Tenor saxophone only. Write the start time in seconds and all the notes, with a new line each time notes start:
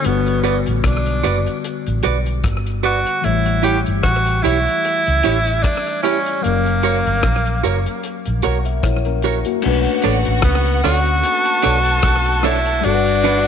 0.06 B3
0.86 D4
2.85 F#4
3.24 E4
3.64 G4
4.03 F#4
4.43 E4
5.63 D4
6.02 C#4
6.43 A#3
10.44 B3
10.84 F#4
12.45 E4
12.85 D4